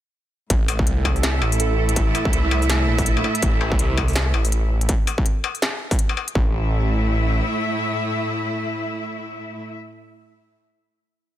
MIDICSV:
0, 0, Header, 1, 6, 480
1, 0, Start_track
1, 0, Key_signature, 0, "minor"
1, 0, Tempo, 365854
1, 656, Time_signature, 4, 2, 24, 8
1, 14924, End_track
2, 0, Start_track
2, 0, Title_t, "Synth texture"
2, 0, Program_c, 0, 99
2, 653, Note_on_c, 0, 69, 88
2, 6426, Note_off_c, 0, 69, 0
2, 14924, End_track
3, 0, Start_track
3, 0, Title_t, "Cello section"
3, 0, Program_c, 1, 48
3, 658, Note_on_c, 1, 45, 71
3, 1058, Note_on_c, 1, 57, 86
3, 1372, Note_on_c, 1, 64, 91
3, 1541, Note_on_c, 1, 76, 83
3, 6414, Note_off_c, 1, 76, 0
3, 6416, Note_off_c, 1, 57, 0
3, 6416, Note_off_c, 1, 64, 0
3, 6417, Note_off_c, 1, 45, 0
3, 8336, Note_on_c, 1, 45, 77
3, 8417, Note_on_c, 1, 57, 75
3, 8498, Note_on_c, 1, 64, 81
3, 8564, Note_on_c, 1, 76, 80
3, 12564, Note_off_c, 1, 45, 0
3, 12645, Note_off_c, 1, 57, 0
3, 12726, Note_off_c, 1, 64, 0
3, 12792, Note_off_c, 1, 76, 0
3, 14924, End_track
4, 0, Start_track
4, 0, Title_t, "Detuned saw bass"
4, 0, Program_c, 2, 39
4, 658, Note_on_c, 2, 33, 94
4, 1121, Note_off_c, 2, 33, 0
4, 1136, Note_on_c, 2, 36, 98
4, 1840, Note_off_c, 2, 36, 0
4, 1856, Note_on_c, 2, 33, 100
4, 2800, Note_off_c, 2, 33, 0
4, 3055, Note_on_c, 2, 36, 99
4, 3760, Note_off_c, 2, 36, 0
4, 3774, Note_on_c, 2, 34, 101
4, 4239, Note_off_c, 2, 34, 0
4, 4496, Note_on_c, 2, 33, 97
4, 4960, Note_off_c, 2, 33, 0
4, 4972, Note_on_c, 2, 36, 98
4, 5678, Note_off_c, 2, 36, 0
4, 5693, Note_on_c, 2, 33, 102
4, 6399, Note_off_c, 2, 33, 0
4, 8336, Note_on_c, 2, 33, 97
4, 9724, Note_off_c, 2, 33, 0
4, 14924, End_track
5, 0, Start_track
5, 0, Title_t, "Struck metal"
5, 897, Note_on_c, 9, 77, 57
5, 1028, Note_off_c, 9, 77, 0
5, 1379, Note_on_c, 9, 77, 86
5, 1510, Note_off_c, 9, 77, 0
5, 1858, Note_on_c, 9, 77, 55
5, 1990, Note_off_c, 9, 77, 0
5, 2818, Note_on_c, 9, 77, 54
5, 2949, Note_off_c, 9, 77, 0
5, 3297, Note_on_c, 9, 77, 83
5, 3429, Note_off_c, 9, 77, 0
5, 4156, Note_on_c, 9, 77, 54
5, 4254, Note_off_c, 9, 77, 0
5, 4254, Note_on_c, 9, 77, 54
5, 4385, Note_off_c, 9, 77, 0
5, 4733, Note_on_c, 9, 77, 52
5, 4864, Note_off_c, 9, 77, 0
5, 5215, Note_on_c, 9, 77, 79
5, 5346, Note_off_c, 9, 77, 0
5, 5693, Note_on_c, 9, 77, 52
5, 5824, Note_off_c, 9, 77, 0
5, 6655, Note_on_c, 9, 77, 53
5, 6786, Note_off_c, 9, 77, 0
5, 7136, Note_on_c, 9, 77, 77
5, 7267, Note_off_c, 9, 77, 0
5, 7995, Note_on_c, 9, 77, 51
5, 8096, Note_off_c, 9, 77, 0
5, 8096, Note_on_c, 9, 77, 49
5, 8227, Note_off_c, 9, 77, 0
5, 14924, End_track
6, 0, Start_track
6, 0, Title_t, "Drums"
6, 657, Note_on_c, 9, 42, 84
6, 658, Note_on_c, 9, 36, 118
6, 789, Note_off_c, 9, 36, 0
6, 789, Note_off_c, 9, 42, 0
6, 897, Note_on_c, 9, 46, 68
6, 1028, Note_off_c, 9, 46, 0
6, 1038, Note_on_c, 9, 36, 107
6, 1138, Note_on_c, 9, 42, 67
6, 1169, Note_off_c, 9, 36, 0
6, 1269, Note_off_c, 9, 42, 0
6, 1377, Note_on_c, 9, 36, 59
6, 1509, Note_off_c, 9, 36, 0
6, 1520, Note_on_c, 9, 46, 36
6, 1618, Note_on_c, 9, 38, 118
6, 1618, Note_on_c, 9, 42, 81
6, 1651, Note_off_c, 9, 46, 0
6, 1750, Note_off_c, 9, 38, 0
6, 1750, Note_off_c, 9, 42, 0
6, 1997, Note_on_c, 9, 46, 66
6, 2096, Note_on_c, 9, 42, 74
6, 2128, Note_off_c, 9, 46, 0
6, 2228, Note_off_c, 9, 42, 0
6, 2477, Note_on_c, 9, 42, 39
6, 2575, Note_off_c, 9, 42, 0
6, 2575, Note_on_c, 9, 42, 83
6, 2577, Note_on_c, 9, 36, 120
6, 2707, Note_off_c, 9, 42, 0
6, 2708, Note_off_c, 9, 36, 0
6, 2818, Note_on_c, 9, 46, 66
6, 2949, Note_off_c, 9, 46, 0
6, 2956, Note_on_c, 9, 36, 108
6, 3058, Note_on_c, 9, 42, 69
6, 3087, Note_off_c, 9, 36, 0
6, 3189, Note_off_c, 9, 42, 0
6, 3438, Note_on_c, 9, 46, 36
6, 3536, Note_on_c, 9, 38, 119
6, 3536, Note_on_c, 9, 42, 85
6, 3569, Note_off_c, 9, 46, 0
6, 3668, Note_off_c, 9, 38, 0
6, 3668, Note_off_c, 9, 42, 0
6, 3915, Note_on_c, 9, 46, 63
6, 3916, Note_on_c, 9, 36, 115
6, 4015, Note_on_c, 9, 42, 73
6, 4047, Note_off_c, 9, 36, 0
6, 4047, Note_off_c, 9, 46, 0
6, 4147, Note_off_c, 9, 42, 0
6, 4394, Note_on_c, 9, 42, 41
6, 4493, Note_off_c, 9, 42, 0
6, 4493, Note_on_c, 9, 42, 81
6, 4495, Note_on_c, 9, 36, 124
6, 4624, Note_off_c, 9, 42, 0
6, 4626, Note_off_c, 9, 36, 0
6, 4875, Note_on_c, 9, 36, 111
6, 4974, Note_on_c, 9, 42, 67
6, 5006, Note_off_c, 9, 36, 0
6, 5105, Note_off_c, 9, 42, 0
6, 5215, Note_on_c, 9, 36, 65
6, 5347, Note_off_c, 9, 36, 0
6, 5356, Note_on_c, 9, 46, 33
6, 5374, Note_off_c, 9, 46, 0
6, 5374, Note_on_c, 9, 46, 27
6, 5420, Note_off_c, 9, 46, 0
6, 5420, Note_on_c, 9, 46, 22
6, 5452, Note_off_c, 9, 46, 0
6, 5452, Note_on_c, 9, 38, 125
6, 5452, Note_on_c, 9, 42, 79
6, 5452, Note_on_c, 9, 46, 18
6, 5532, Note_off_c, 9, 46, 0
6, 5532, Note_on_c, 9, 46, 12
6, 5583, Note_off_c, 9, 38, 0
6, 5583, Note_off_c, 9, 42, 0
6, 5664, Note_off_c, 9, 46, 0
6, 5834, Note_on_c, 9, 46, 63
6, 5934, Note_on_c, 9, 42, 70
6, 5965, Note_off_c, 9, 46, 0
6, 6065, Note_off_c, 9, 42, 0
6, 6315, Note_on_c, 9, 42, 40
6, 6413, Note_off_c, 9, 42, 0
6, 6413, Note_on_c, 9, 42, 80
6, 6415, Note_on_c, 9, 36, 124
6, 6544, Note_off_c, 9, 42, 0
6, 6546, Note_off_c, 9, 36, 0
6, 6655, Note_on_c, 9, 46, 65
6, 6786, Note_off_c, 9, 46, 0
6, 6796, Note_on_c, 9, 36, 111
6, 6896, Note_on_c, 9, 42, 64
6, 6927, Note_off_c, 9, 36, 0
6, 7027, Note_off_c, 9, 42, 0
6, 7278, Note_on_c, 9, 46, 36
6, 7377, Note_on_c, 9, 38, 123
6, 7409, Note_off_c, 9, 46, 0
6, 7508, Note_off_c, 9, 38, 0
6, 7756, Note_on_c, 9, 36, 117
6, 7756, Note_on_c, 9, 46, 64
6, 7856, Note_on_c, 9, 42, 68
6, 7887, Note_off_c, 9, 36, 0
6, 7888, Note_off_c, 9, 46, 0
6, 7987, Note_off_c, 9, 42, 0
6, 8236, Note_on_c, 9, 42, 38
6, 8336, Note_on_c, 9, 36, 115
6, 8368, Note_off_c, 9, 42, 0
6, 8467, Note_off_c, 9, 36, 0
6, 14924, End_track
0, 0, End_of_file